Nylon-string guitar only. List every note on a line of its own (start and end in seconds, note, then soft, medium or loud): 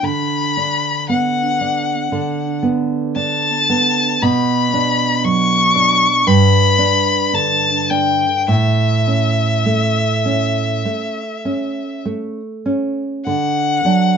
0.03 2.07 D3 medium
0.57 1.41 D4 soft
1.09 1.91 B3 medium
1.61 2.43 D4 soft
2.12 4.17 D3 medium
2.63 3.47 B3 medium
3.16 4.00 D4 medium
3.69 4.22 B3 medium
4.22 6.23 B2 medium
4.73 5.55 D4 medium
5.24 6.06 F#3 medium
5.75 6.26 D4 medium
6.27 8.45 G2 medium
6.79 7.67 D4 medium
7.33 8.25 D3 medium
7.91 8.49 D4 medium
8.48 10.82 A2 medium
9.07 10.02 C#4 medium
9.66 10.61 A3 medium
10.25 11.22 C#4 soft
10.85 11.81 A3 soft
11.45 12.40 C#4 medium
12.05 13.02 A3 soft
12.66 13.26 C#4 medium
13.27 13.82 D3 medium
13.85 14.17 F#3 soft
13.85 14.17 D4 soft